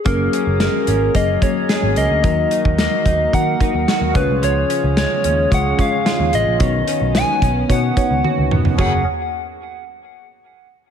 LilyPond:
<<
  \new Staff \with { instrumentName = "Soft synth lead" } { \time 4/4 \key fis \major \tempo 4 = 110 ais'4 ais'4 dis''8 cis''4 dis''8~ | dis''4 dis''4 fis''4. b'8 | cis''4 cis''4 fis''8 eis''4 dis''8~ | dis''4 gis''4 fis''4. r8 |
fis''8 r2. r8 | }
  \new Staff \with { instrumentName = "FM electric piano" } { \time 4/4 \key fis \major <fis ais cis' gis'>4.~ <fis ais cis' gis'>16 r16 <fis ais cis' gis'>8 <fis ais cis' gis'>4. | <fis ais dis' ais'>4.~ <fis ais dis' ais'>16 r16 <fis ais dis' ais'>8 <fis ais dis' ais'>4 <gis cis' eis' cis''>8~ | <gis cis' eis' cis''>4~ <gis cis' eis' cis''>16 r8. <gis cis' eis' cis''>8 <gis cis' eis' cis''>4. | <b dis' fis' cis''>4.~ <b dis' fis' cis''>16 r16 <b dis' fis' cis''>8 <b dis' fis' cis''>4. |
<ais fis' gis' cis''>8 r2. r8 | }
  \new Staff \with { instrumentName = "Pipe organ" } { \time 4/4 \key fis \major << { ais'1~ | ais'2.~ ais'8 gis'8~ | gis'1 | r1 |
<fis cis' gis' ais'>8 r2. r8 | } \\ { <fis cis' gis'>1 | <dis dis' fis'>2.~ <dis dis' fis'>8 <cis cis' eis'>8~ | <cis cis' eis'>1 | <dis b>1 |
r1 | } >> }
  \new Staff \with { instrumentName = "Clean electric guitar" } { \time 4/4 \key fis \major ais8 cis'8 ais8 cis'8 ais8 cis'8 gis'8 ais8 | fis8 dis'8 ais8 dis'8 ais8 dis'8 fis'8 eis8 | eis8 cis'8 gis8 cis'8 gis8 cis'8 eis'8 gis8 | dis8 cis'8 b8 cis'8 b8 cis'8 fis'8 b8 |
<fis ais cis' gis'>8 r2. r8 | }
  \new Staff \with { instrumentName = "Picked electric bass" } { \clef bass \time 4/4 \key fis \major fis,,8 r16 fis,,8 r16 gis,,8 fis,,8 r8. gis,,16 cis,16 d,16 | dis,8 r16 dis,8 r16 dis,8 dis8 r16 dis,16 r16 dis,16 cis,16 bis,,16 | cis,8 r16 cis,8 r16 dis,8 cis,8 r8. dis,16 a,,16 ais,,16 | b,,8 r16 b,,8 r16 b,,8 b,8 r16 cis,16 r16 cis,16 e,,16 eis,,16 |
fis,,8 r2. r8 | }
  \new DrumStaff \with { instrumentName = "Drums" } \drummode { \time 4/4 <hh bd>8 hh8 <hh sn>8 hh8 <hh bd>8 <hh bd>8 <hh sn>8 hh8 | <hh bd>8 hh16 bd16 <hh sn>8 <hh bd>8 <hh bd>8 <hh bd>8 <hh sn>8 <hh bd>8 | hh8 hh8 <hh sn>8 hh8 <hh bd>8 <hh bd>8 <hh sn>8 hh8 | <hh bd>8 hh8 <hh sn>8 <hh bd>8 <hh bd>8 <hh bd>8 tommh8 toml16 tomfh16 |
<cymc bd>4 r4 r4 r4 | }
>>